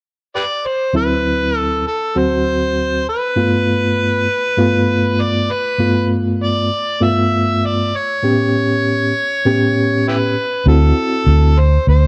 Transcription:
0.36 0.42 G4 medium
0.36 0.43 B4 medium
0.36 0.68 D5 medium
0.66 0.95 C5 medium
0.93 1.83 D2 medium
0.93 1.83 F#3 medium
0.93 1.83 C4 medium
0.93 1.84 E4 medium
0.93 1.57 B4 medium
1.57 1.82 A4 medium
1.87 2.19 A4 medium
2.15 3.05 D2 medium
2.15 3.05 F#3 medium
2.15 3.05 C4 medium
2.15 3.05 F#4 medium
2.15 3.08 C5 medium
3.09 5.23 B4 medium
3.36 4.26 G2 medium
3.36 4.26 A3 medium
3.36 4.26 B3 medium
3.36 4.26 F4 medium
4.57 5.47 G2 medium
4.57 5.48 A3 medium
4.57 5.48 B3 medium
4.57 5.48 F4 medium
5.21 5.54 D5 medium
5.52 6.12 B4 medium
5.79 6.69 G2 medium
5.79 6.69 A3 medium
5.79 6.69 B3 medium
5.79 6.69 F4 medium
6.44 7.05 D5 medium
7.01 7.91 G2 medium
7.01 7.90 A3 medium
7.01 7.91 B3 medium
7.01 7.91 F4 medium
7.01 7.67 E5 medium
7.65 7.97 D5 medium
7.96 10.07 C#5 medium
8.23 9.12 A2 medium
8.23 9.13 B3 medium
8.23 9.13 C#4 medium
8.23 9.13 G4 medium
9.45 10.34 A2 medium
9.45 10.34 B3 medium
9.45 10.35 C#4 medium
9.45 10.35 G4 medium
10.08 10.17 E4 medium
10.08 10.16 G4 medium
10.08 10.63 B4 medium
10.66 10.91 D2 medium
10.66 11.56 C4 medium
10.66 11.56 E4 medium
10.66 11.56 F#4 medium
10.66 11.60 A4 medium
11.26 11.77 D2 medium
11.59 11.88 C5 medium
11.87 12.07 D2 medium
11.87 12.07 C5 medium

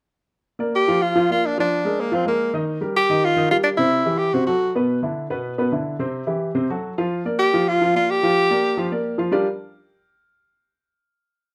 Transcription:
0.59 0.82 A#3 medium
0.59 0.82 A#4 medium
0.59 0.82 D5 medium
0.75 1.03 G4 medium
0.88 1.10 F3 medium
0.88 1.11 F4 medium
0.88 1.11 F5 medium
1.02 1.29 F4 medium
1.15 1.27 F3 medium
1.15 1.27 F4 medium
1.15 1.27 F5 medium
1.30 1.52 A#3 medium
1.30 1.47 F4 medium
1.30 1.53 A#4 medium
1.30 1.52 D5 medium
1.46 1.58 D4 medium
1.58 1.80 F3 medium
1.58 2.02 D4 medium
1.58 1.80 F4 medium
1.58 1.80 F5 medium
1.85 2.07 G#3 medium
1.85 2.08 G#4 medium
1.85 2.07 A#4 medium
2.00 2.16 A#3 medium
2.12 2.23 F3 medium
2.12 2.27 C4 medium
2.12 2.23 F4 medium
2.12 2.24 F5 medium
2.25 2.48 G#3 medium
2.25 2.53 A#3 medium
2.25 2.49 G#4 medium
2.25 2.49 A#4 medium
2.54 2.76 D#3 medium
2.54 2.76 D#4 medium
2.54 2.77 D#5 medium
2.81 3.04 G3 medium
2.81 3.04 G4 medium
2.81 3.04 A#4 medium
2.97 3.26 G4 loud
3.10 3.32 D#3 medium
3.10 3.32 D#4 medium
3.10 3.32 D#5 medium
3.25 3.50 F4 medium
3.36 3.48 D#3 medium
3.36 3.48 D#4 medium
3.36 3.48 D#5 medium
3.51 3.74 G3 medium
3.51 3.57 F4 medium
3.51 3.74 G4 medium
3.51 3.74 A#4 medium
3.63 3.70 D4 medium
3.77 4.01 C3 medium
3.77 4.01 C4 medium
3.77 4.19 E4 medium
3.77 4.02 C5 medium
4.06 4.29 E3 medium
4.06 4.29 E4 medium
4.06 4.29 G4 medium
4.18 4.35 G4 medium
4.33 4.45 C3 medium
4.33 4.45 C4 medium
4.33 4.46 F#4 medium
4.33 4.45 C5 medium
4.47 4.70 F#3 medium
4.47 4.73 F#4 medium
4.47 4.70 F#4 medium
4.47 4.70 A4 medium
4.76 4.98 B2 medium
4.76 4.98 B3 medium
4.76 4.99 B4 medium
5.02 5.25 D3 medium
5.02 5.26 D4 medium
5.02 5.26 E4 medium
5.30 5.53 B2 medium
5.30 5.53 B3 medium
5.30 5.53 B4 medium
5.58 5.70 B2 medium
5.58 5.70 B3 medium
5.58 5.70 B4 medium
5.72 5.95 D3 medium
5.72 5.95 D4 medium
5.72 5.95 E4 medium
5.99 6.22 C3 medium
5.99 6.23 C4 medium
5.99 6.23 C5 medium
6.27 6.50 E3 medium
6.27 6.50 E4 medium
6.27 6.50 G4 medium
6.55 6.66 C3 medium
6.55 6.66 C4 medium
6.55 6.67 C5 medium
6.70 6.93 F#3 medium
6.70 6.93 F#4 medium
6.70 6.93 A4 medium
6.98 7.20 F3 medium
6.98 7.20 F4 medium
6.98 7.20 F5 medium
7.25 7.48 A#3 medium
7.25 7.48 A#4 medium
7.25 7.48 D5 medium
7.39 7.70 G4 loud
7.54 7.76 F3 medium
7.54 7.76 F4 medium
7.54 7.76 F5 medium
7.68 7.95 F4 medium
7.81 7.92 F3 medium
7.81 7.92 F4 medium
7.81 7.92 F5 medium
7.95 8.17 A#3 medium
7.95 8.12 F4 medium
7.95 8.17 A#4 medium
7.95 8.18 D5 medium
8.10 9.06 G4 medium
8.23 8.45 F3 medium
8.23 8.45 F4 medium
8.23 8.46 F5 medium
8.50 8.73 A#3 medium
8.50 8.73 A#4 medium
8.50 8.73 D5 medium
8.77 8.89 F3 medium
8.77 8.89 F4 medium
8.77 8.89 F5 medium
8.92 9.14 A#3 medium
8.92 9.14 A#4 medium
8.92 9.14 D5 medium
9.18 9.30 F3 medium
9.18 9.30 F4 medium
9.18 9.30 F5 medium
9.32 9.45 G3 medium
9.32 9.45 D4 medium
9.32 9.46 F4 medium
9.32 9.46 G4 medium
9.32 9.46 A#4 medium
9.32 9.46 D5 medium

